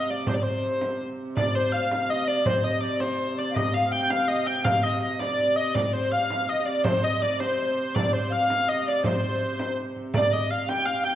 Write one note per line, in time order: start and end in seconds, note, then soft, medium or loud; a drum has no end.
0.00 1.37 C3 medium
0.00 0.10 D#5 medium
0.10 0.28 D5 medium
0.27 0.34 C5 medium
0.27 frame drum medium
0.34 0.43 D5 medium
0.43 1.01 C5 medium
0.63 frame drum soft
0.81 frame drum medium
1.00 frame drum soft
1.35 5.75 C3 medium
1.35 1.53 D5 medium
1.35 1.55 D5 medium
1.35 frame drum medium
1.54 1.88 C5 medium
1.54 1.73 C5 medium
1.72 1.92 F5 medium
1.72 frame drum soft
1.90 2.07 F5 medium
1.90 2.10 F5 medium
1.90 frame drum medium
2.08 2.29 D#5 medium
2.08 2.28 D#5 medium
2.08 frame drum soft
2.28 2.46 D5 medium
2.28 2.47 D5 medium
2.46 2.64 C5 medium
2.46 frame drum medium
2.64 2.82 D#5 medium
2.64 2.81 D#5 medium
2.80 3.00 D5 medium
2.80 3.01 D5 medium
2.80 frame drum soft
2.99 3.35 C5 medium
2.99 3.39 C5 medium
2.99 frame drum medium
3.19 frame drum soft
3.36 3.49 D5 medium
3.36 3.56 D5 medium
3.50 3.56 F5 medium
3.54 3.72 D#5 medium
3.54 3.74 D#5 medium
3.54 frame drum medium
3.73 3.92 F5 medium
3.91 4.11 G5 medium
3.91 4.10 G5 loud
3.91 frame drum soft
4.09 4.48 F5 medium
4.09 4.28 F5 loud
4.09 frame drum medium
4.28 4.47 D#5 medium
4.28 frame drum soft
4.46 4.63 G5 medium
4.46 4.65 G5 medium
4.64 4.84 F5 medium
4.64 4.83 F5 medium
4.64 frame drum medium
4.82 5.00 D#5 medium
4.82 5.01 D#5 medium
4.82 frame drum soft
5.01 5.20 D#5 medium
5.01 5.18 D#5 medium
5.01 frame drum soft
5.19 5.54 D5 medium
5.19 5.57 D5 medium
5.19 frame drum medium
5.39 frame drum soft
5.56 5.75 D#5 medium
5.56 5.74 D#5 medium
5.74 10.13 C3 medium
5.74 5.93 D5 medium
5.74 frame drum medium
5.93 6.11 C5 medium
5.93 6.10 C5 medium
6.11 6.28 F5 medium
6.11 6.31 F5 medium
6.11 frame drum soft
6.30 6.47 F5 medium
6.30 6.49 F5 medium
6.30 frame drum medium
6.48 6.67 D#5 medium
6.48 6.66 D#5 medium
6.48 frame drum soft
6.65 6.84 D5 medium
6.65 6.85 D5 medium
6.84 7.01 C5 medium
6.84 7.04 C5 medium
6.84 frame drum medium
7.02 7.36 D#5 medium
7.02 7.22 D#5 medium
7.22 7.40 D5 medium
7.22 frame drum soft
7.39 7.70 C5 medium
7.39 7.95 C5 medium
7.39 frame drum medium
7.59 frame drum soft
7.94 8.13 D5 medium
7.94 frame drum medium
8.13 8.32 C5 medium
8.29 8.47 F5 medium
8.29 8.50 F5 medium
8.29 frame drum soft
8.48 8.65 F5 medium
8.48 8.68 F5 medium
8.48 frame drum medium
8.66 8.84 D#5 medium
8.66 8.88 D#5 medium
8.66 frame drum soft
8.85 9.04 D5 medium
8.85 9.06 D5 medium
9.03 9.76 C5 medium
9.03 9.74 C5 medium
9.03 frame drum medium
9.40 frame drum soft
9.59 frame drum medium
9.96 frame drum soft
10.13 11.15 C3 medium
10.13 10.32 D5 medium
10.13 10.33 D5 medium
10.13 frame drum medium
10.31 10.49 D#5 medium
10.31 10.50 D#5 medium
10.49 10.70 F5 medium
10.49 10.68 F5 medium
10.68 10.85 G5 loud
10.68 10.88 G5 medium
10.68 frame drum medium
10.85 11.04 F5 medium
10.85 11.06 F5 medium
11.04 11.15 G5 medium